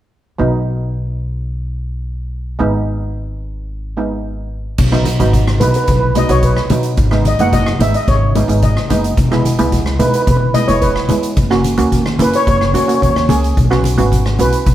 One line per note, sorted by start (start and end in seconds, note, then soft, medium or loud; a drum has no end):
0.38 2.55 B1 medium
0.38 2.54 F#3 medium
0.38 2.55 B3 medium
0.38 2.55 D#4 medium
2.59 4.75 G#1 medium
2.59 3.93 G#3 medium
2.59 3.94 B3 medium
2.59 3.94 D#4 medium
3.97 4.79 G#3 soft
3.97 4.79 B3 soft
3.97 4.79 D#4 soft
4.78 5.17 B1 medium
4.78 kick loud
4.78 crash medium
4.92 5.09 F#3 medium
4.92 5.09 B3 medium
4.92 5.09 D#4 medium
4.92 cross-stick medium
5.06 closed hi-hat medium
5.06 low conga medium
5.20 5.58 G#1 medium
5.20 5.44 F#3 medium
5.20 5.44 B3 medium
5.20 5.45 D#4 medium
5.20 closed hi-hat medium
5.20 high conga medium
5.33 kick medium
5.33 closed hi-hat medium
5.48 cross-stick medium
5.60 5.74 B1 medium
5.60 5.94 F#3 medium
5.60 5.94 B3 medium
5.60 5.94 D#4 medium
5.60 5.67 B4 medium
5.60 closed hi-hat medium
5.60 high conga medium
5.60 low conga medium
5.68 5.75 B4 medium
5.74 5.83 B4 medium
5.74 closed hi-hat medium
5.84 6.26 B1 medium
5.84 5.90 B4 medium
5.84 kick medium
5.84 closed hi-hat medium
5.91 5.98 B4 medium
5.99 6.07 B4 medium
6.15 6.24 F#3 medium
6.15 6.24 B3 medium
6.15 6.24 D#4 medium
6.15 6.29 D#5 medium
6.15 closed hi-hat medium
6.15 high conga medium
6.29 6.55 B1 medium
6.29 6.54 F#3 medium
6.29 6.54 B3 medium
6.29 6.54 F#4 medium
6.29 6.44 C#5 medium
6.29 closed hi-hat medium
6.43 6.82 B4 medium
6.43 kick medium
6.43 closed hi-hat medium
6.57 cross-stick medium
6.70 6.96 B2 medium
6.70 6.95 F#3 medium
6.70 6.95 B3 medium
6.70 6.95 D#4 medium
6.70 closed hi-hat medium
6.70 high conga medium
6.70 low conga medium
6.83 closed hi-hat medium
6.97 7.36 G#1 medium
6.97 kick loud
6.97 closed hi-hat medium
7.11 7.28 G#3 medium
7.11 7.28 B3 medium
7.11 7.28 D#4 medium
7.11 cross-stick medium
7.25 7.40 D#5 medium
7.25 closed hi-hat medium
7.25 low conga medium
7.39 7.77 F#1 medium
7.39 7.64 G#3 medium
7.39 7.64 B3 medium
7.39 7.64 D#4 medium
7.39 7.54 F#5 medium
7.39 closed hi-hat medium
7.39 high conga medium
7.53 7.81 D#5 medium
7.53 kick medium
7.53 closed hi-hat medium
7.67 cross-stick medium
7.79 7.93 G#1 medium
7.79 8.13 G#3 medium
7.79 8.13 B3 medium
7.79 8.13 D#4 medium
7.79 7.95 E5 medium
7.79 closed hi-hat medium
7.79 high conga medium
7.79 low conga medium
7.94 8.09 D#5 medium
7.94 closed hi-hat medium
8.08 8.46 G#1 medium
8.08 8.65 C#5 medium
8.08 kick medium
8.08 closed hi-hat medium
8.35 8.44 G#3 medium
8.35 8.44 B3 medium
8.35 8.44 D#4 medium
8.35 closed hi-hat medium
8.35 high conga medium
8.48 8.74 G#1 medium
8.48 8.74 G#3 medium
8.48 8.74 B3 medium
8.48 8.74 D#4 medium
8.48 closed hi-hat medium
8.62 9.02 D#5 medium
8.62 kick medium
8.62 closed hi-hat medium
8.77 cross-stick medium
8.90 9.16 F#1 medium
8.90 9.15 G#3 medium
8.90 9.15 B3 medium
8.90 9.15 D#4 medium
8.90 closed hi-hat medium
8.90 high conga medium
8.90 low conga medium
9.04 closed hi-hat medium
9.17 9.56 E1 medium
9.17 kick loud
9.17 closed hi-hat medium
9.31 9.48 G#3 medium
9.31 9.48 B3 medium
9.31 9.48 E4 medium
9.31 cross-stick medium
9.45 closed hi-hat medium
9.45 low conga medium
9.59 9.97 C#2 medium
9.59 9.84 G#3 medium
9.59 9.84 B3 medium
9.59 9.84 E4 medium
9.59 closed hi-hat medium
9.59 high conga medium
9.72 kick medium
9.72 closed hi-hat medium
9.86 cross-stick medium
9.99 10.13 E1 medium
9.99 10.33 G#3 medium
9.99 10.33 B3 medium
9.99 10.33 D#4 medium
9.99 10.06 B4 medium
9.99 closed hi-hat medium
9.99 high conga medium
9.99 low conga medium
10.07 10.14 B4 soft
10.14 10.21 B4 medium
10.14 closed hi-hat medium
10.22 10.29 B4 medium
10.27 10.66 E1 medium
10.27 10.36 B4 medium
10.27 kick loud
10.27 closed hi-hat medium
10.37 10.45 B4 medium
10.54 10.63 G#3 medium
10.54 10.63 B3 medium
10.54 10.63 E4 medium
10.54 10.69 D#5 medium
10.54 closed hi-hat medium
10.54 high conga medium
10.68 10.94 E1 medium
10.68 10.93 G#3 medium
10.68 10.93 B3 medium
10.68 10.93 E4 medium
10.68 10.82 C#5 medium
10.68 closed hi-hat medium
10.82 11.20 B4 medium
10.82 kick medium
10.82 closed hi-hat medium
10.96 cross-stick medium
11.09 11.35 E2 medium
11.09 11.34 G#3 medium
11.09 11.34 B3 medium
11.09 11.34 E4 medium
11.09 closed hi-hat medium
11.09 high conga medium
11.09 low conga medium
11.23 closed hi-hat medium
11.37 11.75 F#1 medium
11.37 kick medium
11.37 closed hi-hat medium
11.37 low conga soft
11.50 11.67 A#3 medium
11.50 11.67 C#4 medium
11.50 11.67 F#4 medium
11.50 cross-stick medium
11.64 closed hi-hat medium
11.64 low conga soft
11.78 12.17 D#2 medium
11.78 12.03 A#3 medium
11.78 12.03 C#4 medium
11.78 12.03 F#4 medium
11.78 closed hi-hat medium
11.78 high conga medium
11.92 kick medium
11.92 closed hi-hat medium
12.06 cross-stick medium
12.19 12.32 F#1 medium
12.19 12.52 A#3 medium
12.19 12.52 C#4 medium
12.19 12.53 E4 medium
12.19 12.34 B4 medium
12.19 closed hi-hat medium
12.19 low conga medium
12.33 12.48 C#5 medium
12.33 closed hi-hat medium
12.47 12.72 F#1 medium
12.47 12.55 C#5 medium
12.47 kick medium
12.47 closed hi-hat medium
12.57 12.63 C#5 medium
12.61 cross-stick medium
12.65 12.71 C#5 medium
12.72 12.99 E2 medium
12.72 12.83 A#3 medium
12.72 12.83 C#4 medium
12.72 12.83 F#4 medium
12.72 12.77 C#5 soft
12.72 closed hi-hat medium
12.72 high conga medium
12.78 12.85 C#5 medium
12.86 13.13 A#3 medium
12.86 13.13 C#4 medium
12.86 13.13 F#4 medium
12.86 12.93 C#5 soft
12.86 closed hi-hat medium
12.95 13.01 C#5 medium
13.02 13.27 D#2 medium
13.02 13.08 C#5 medium
13.02 kick medium
13.02 closed hi-hat soft
13.10 13.15 C#5 medium
13.16 13.23 C#5 medium
13.16 cross-stick medium
13.29 13.54 C#2 medium
13.29 13.54 A#3 medium
13.29 13.54 C#4 medium
13.29 13.54 G#4 medium
13.29 closed hi-hat medium
13.29 high conga medium
13.29 low conga medium
13.44 closed hi-hat medium
13.57 13.95 B1 medium
13.57 kick loud
13.57 closed hi-hat soft
13.70 13.87 B3 medium
13.70 13.87 C#4 medium
13.70 13.87 F#4 medium
13.70 cross-stick medium
13.84 closed hi-hat medium
13.84 low conga medium
13.97 14.36 G#1 medium
13.97 14.23 B3 medium
13.97 14.23 C#4 medium
13.97 14.23 F#4 medium
13.97 closed hi-hat medium
13.97 high conga medium
14.12 kick medium
14.12 closed hi-hat medium
14.26 cross-stick medium
14.39 14.52 B1 medium
14.39 14.72 B3 medium
14.39 14.72 C#4 medium
14.39 14.72 F#4 medium
14.39 14.74 B4 medium
14.39 closed hi-hat medium
14.39 high conga medium
14.52 closed hi-hat medium
14.66 14.74 B1 medium
14.66 kick medium
14.66 closed hi-hat medium